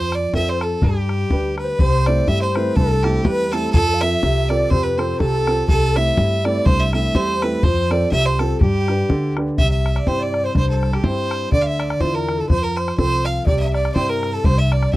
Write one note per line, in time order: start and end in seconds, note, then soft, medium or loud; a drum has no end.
0.00 0.25 F2 loud
0.00 0.79 F3 medium
0.00 0.11 C5 medium
0.00 0.16 C5 loud
0.12 0.34 D5 medium
0.12 bodhran medium
0.34 0.74 F2 medium
0.34 0.81 C4 medium
0.34 0.81 F4 medium
0.34 0.82 A4 medium
0.34 0.51 E5 medium
0.34 bodhran medium
0.49 0.64 C5 medium
0.49 0.62 C5 medium
0.61 0.85 A4 medium
0.61 0.82 A4 medium
0.61 bodhran medium
0.82 1.22 G2 loud
0.82 1.77 G3 medium
0.82 1.58 G4 medium
0.82 1.55 G4 medium
0.82 bodhran medium
1.09 bodhran medium
1.30 1.71 D2 medium
1.30 1.78 D4 soft
1.30 1.79 G4 soft
1.30 1.79 B4 medium
1.30 bodhran medium
1.58 1.82 B4 medium
1.58 1.66 B4 medium
1.58 bodhran medium
1.65 1.71 C5 medium
1.70 1.81 B4 medium
1.79 2.20 C2 loud
1.79 2.27 C3 medium
1.79 2.30 C5 medium
1.79 2.08 C5 loud
1.79 bodhran medium
2.06 2.46 A3 soft
2.06 2.46 C4 soft
2.06 2.46 E4 medium
2.06 2.29 D5 medium
2.06 bodhran medium
2.28 2.68 G2 medium
2.28 2.76 G3 medium
2.28 2.41 E5 loud
2.28 2.44 E5 medium
2.28 bodhran medium
2.42 2.56 C5 medium
2.42 2.77 C5 medium
2.55 2.95 A3 soft
2.55 2.95 C4 soft
2.55 2.95 E4 medium
2.55 2.77 B4 medium
2.55 bodhran medium
2.76 3.17 C2 loud
2.76 3.24 G2 medium
2.76 3.04 A4 loud
2.76 3.22 A4 medium
2.76 bodhran medium
3.03 3.43 A3 soft
3.03 3.44 C4 soft
3.03 3.44 E4 medium
3.03 3.26 G4 medium
3.03 bodhran medium
3.25 3.66 E2 medium
3.25 3.73 G3 medium
3.25 3.54 B4 loud
3.25 3.51 B4 medium
3.25 bodhran loud
3.52 3.70 A3 soft
3.52 3.70 C4 soft
3.52 3.70 E4 medium
3.52 3.72 A4 loud
3.52 3.72 A4 medium
3.52 bodhran medium
3.72 4.14 F2 loud
3.72 4.21 F3 medium
3.72 4.02 A4 loud
3.72 3.95 A4 medium
3.72 bodhran loud
3.94 4.04 F5 medium
4.01 4.41 C4 soft
4.01 4.41 F4 soft
4.01 4.41 A4 soft
4.01 4.50 E5 loud
4.01 4.50 E5 medium
4.01 bodhran medium
4.23 4.63 C2 medium
4.23 4.69 C3 medium
4.23 bodhran medium
4.49 4.89 C4 medium
4.49 4.89 F4 medium
4.49 4.89 A4 medium
4.49 4.72 D5 loud
4.49 4.73 D5 medium
4.49 bodhran medium
4.70 5.12 F2 loud
4.70 5.18 C3 medium
4.70 4.85 C5 loud
4.70 4.87 C5 medium
4.70 bodhran medium
4.83 4.99 B4 medium
4.83 5.01 B4 medium
4.97 5.37 C4 medium
4.97 5.37 F4 soft
4.97 5.38 A4 medium
4.97 5.19 C5 medium
4.97 5.21 C5 medium
4.97 bodhran medium
5.19 5.60 C2 medium
5.19 5.67 C3 medium
5.19 5.65 A4 loud
5.19 5.69 A4 medium
5.19 bodhran medium
5.47 5.64 C4 soft
5.47 5.65 F4 soft
5.47 5.65 A4 soft
5.47 bodhran medium
5.68 6.09 C2 loud
5.68 6.16 C3 medium
5.68 5.97 A4 loud
5.68 5.98 A4 medium
5.68 bodhran medium
5.95 6.35 A3 soft
5.95 6.35 C4 soft
5.95 6.35 E4 soft
5.95 6.46 E5 medium
5.95 bodhran medium
6.17 6.57 G2 medium
6.17 6.64 G3 medium
6.17 bodhran medium
6.44 6.83 A3 medium
6.44 6.84 C4 soft
6.44 6.84 E4 medium
6.44 6.65 D5 medium
6.44 6.67 D5 loud
6.44 bodhran medium
6.66 7.06 C2 medium
6.66 7.13 G2 medium
6.66 6.81 C5 loud
6.66 6.78 C5 medium
6.66 bodhran loud
6.80 6.93 E5 loud
6.80 6.93 E5 medium
6.93 7.32 A3 soft
6.93 7.33 C4 soft
6.93 7.33 E4 medium
6.93 7.18 E5 medium
6.93 7.17 E5 medium
6.93 bodhran medium
7.15 7.54 E2 medium
7.15 7.62 G3 medium
7.15 7.44 C5 loud
7.15 7.43 C5 medium
7.15 bodhran medium
7.42 7.59 A3 medium
7.42 7.59 C4 medium
7.42 7.60 E4 medium
7.42 7.65 B4 medium
7.42 bodhran medium
7.63 8.03 F2 loud
7.63 8.11 F3 medium
7.63 7.93 C5 loud
7.63 8.09 C5 medium
7.63 bodhran medium
7.91 8.30 C4 medium
7.91 8.30 F4 soft
7.91 8.30 A4 medium
7.91 8.11 D5 medium
7.91 bodhran medium
8.11 8.52 C2 loud
8.11 8.59 C3 medium
8.11 8.27 E5 loud
8.11 8.25 E5 medium
8.11 bodhran medium
8.26 8.41 C5 medium
8.39 8.56 C4 medium
8.39 8.57 F4 soft
8.39 8.60 A4 medium
8.39 8.62 A4 medium
8.39 8.57 A4 medium
8.39 bodhran medium
8.60 9.01 G2 loud
8.60 9.08 G3 medium
8.60 9.36 G4 medium
8.60 9.33 G4 medium
8.60 bodhran medium
8.88 9.27 D4 soft
8.88 9.28 G4 soft
8.88 9.28 B4 soft
8.88 bodhran medium
9.09 9.49 D2 medium
9.09 9.56 D3 medium
9.09 bodhran medium
9.37 9.54 D4 medium
9.37 9.54 G4 soft
9.37 9.54 B4 soft
9.37 bodhran medium
9.57 9.98 C2 loud
9.57 10.52 C3 medium
9.57 9.70 E5 medium
9.57 9.71 E5 loud
9.57 bodhran medium
9.71 9.94 E5 medium
9.71 9.98 E5 medium
9.86 bodhran medium
9.95 10.05 D5 medium
9.95 10.09 D5 medium
9.95 bodhran medium
10.06 10.46 G2 medium
10.06 10.54 C4 medium
10.06 10.54 E4 soft
10.06 10.54 G4 medium
10.06 10.21 C5 medium
10.06 10.24 C5 medium
10.06 bodhran medium
10.19 10.46 D5 medium
10.19 10.47 D5 medium
10.34 bodhran medium
10.44 10.55 C5 medium
10.55 10.95 C2 loud
10.55 11.49 G2 medium
10.55 10.91 C5 medium
10.55 10.68 C5 medium
10.55 bodhran medium
10.70 10.95 A4 medium
10.83 bodhran medium
10.93 11.05 G4 medium
10.93 11.03 G4 medium
10.93 bodhran medium
11.04 11.44 G2 medium
11.04 11.51 C4 medium
11.04 11.51 E4 soft
11.04 11.51 G4 medium
11.04 11.51 C5 loud
11.04 11.49 C5 medium
11.04 bodhran medium
11.31 bodhran medium
11.52 11.92 D2 loud
11.52 12.46 D3 medium
11.52 11.63 D5 loud
11.52 11.65 D5 medium
11.52 bodhran medium
11.62 11.68 F5 medium
11.66 11.81 E5 medium
11.79 12.02 D5 medium
11.79 bodhran medium
11.90 bodhran medium
12.00 12.41 E2 loud
12.00 12.48 D4 medium
12.00 12.49 E4 medium
12.00 12.49 F4 medium
12.00 12.16 C5 loud
12.00 12.15 C5 medium
12.00 bodhran medium
12.14 12.39 A#4 medium
12.14 12.41 A#4 medium
12.29 bodhran medium
12.38 12.50 A4 medium
12.38 12.48 A4 medium
12.49 12.89 F2 medium
12.49 13.44 F3 medium
12.49 12.64 C5 loud
12.49 12.63 C5 medium
12.49 bodhran medium
12.62 12.75 A#4 medium
12.62 12.77 A#4 medium
12.76 12.97 C5 medium
12.76 12.96 C5 medium
12.76 bodhran medium
12.88 bodhran medium
12.97 13.38 C2 medium
12.97 13.45 C4 soft
12.97 13.45 F4 soft
12.97 13.46 A4 medium
12.97 13.26 C5 loud
12.97 13.27 C5 medium
12.97 bodhran medium
13.25 13.45 F5 medium
13.25 13.47 F5 medium
13.25 bodhran medium
13.46 13.87 C2 medium
13.46 14.41 C3 medium
13.46 13.62 D5 medium
13.46 13.59 D5 loud
13.46 bodhran medium
13.59 13.73 E5 medium
13.59 13.76 E5 medium
13.73 13.91 D5 medium
13.73 13.94 D5 medium
13.73 bodhran soft
13.85 bodhran medium
13.92 14.36 G2 medium
13.92 14.43 C4 medium
13.92 14.43 E4 medium
13.92 14.11 C5 loud
13.92 14.11 C5 medium
13.92 13.96 D5 medium
13.92 13.97 D5 medium
13.92 bodhran medium
13.96 14.43 G4 medium
14.09 14.35 A#4 medium
14.09 14.34 A#4 medium
14.23 bodhran medium
14.33 14.46 A4 medium
14.44 14.84 C2 loud
14.44 14.97 G2 medium
14.44 14.60 C5 loud
14.44 14.59 C5 medium
14.44 bodhran medium
14.58 14.74 E5 medium
14.72 14.92 D5 medium
14.72 14.94 D5 medium
14.72 bodhran medium
14.83 bodhran medium
14.93 14.97 G2 medium
14.93 14.97 C4 medium
14.93 14.97 E5 loud
14.93 14.97 E5 medium
14.93 bodhran medium